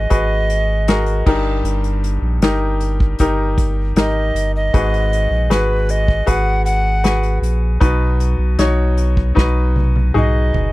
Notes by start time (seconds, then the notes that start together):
Already playing: G#2 F#4 G#4 B4 D#5
0.10 G#1 F#4 G#4 B4, kick, closed hi-hat
0.50 closed hi-hat
0.88 F#4 G#4 A#4, snare, closed hi-hat
1.06 closed hi-hat
1.26 G1 G2 D#4 G4 A#4, kick, crash
1.64 G1, closed hi-hat
1.84 closed hi-hat
2.04 closed hi-hat
2.22 A#1
2.41 G1 D#4 G4 A#4, snare, closed hi-hat
2.81 closed hi-hat
3.00 kick
3.19 G1 D#4 G4 A#4, kick, closed hi-hat
3.58 kick, closed hi-hat
3.95 G#1 D#4 G4 A#4 D#5, snare, closed hi-hat
4.34 G1, closed hi-hat
4.56 D#5
4.74 G#1 G#2 F#4 G#4 B4, kick, closed hi-hat
4.94 closed hi-hat
5.13 closed hi-hat
5.30 A#1
5.49 G#1 F#4 G#4 B4, snare, closed hi-hat
5.89 D#5, closed hi-hat
6.08 kick
6.26 G#1 F#4 G#4 B4 F#5, kick, closed hi-hat
6.65 F#5, closed hi-hat
7.04 F#4 G#4 B4, snare, closed hi-hat
7.23 closed hi-hat
7.41 A#1, closed hi-hat
7.80 B1 B2 D#4 F#4 B4, kick, closed hi-hat
8.20 closed hi-hat
8.38 B1
8.58 B1 D#4 F#4 C#5, snare, closed hi-hat
8.97 closed hi-hat
9.17 kick
9.35 B1 D#4 F#4 B4, kick, snare
9.76 high tom
9.96 high tom
10.14 B1 D#4 F#4 G#4 D#5, mid tom
10.54 F#1, floor tom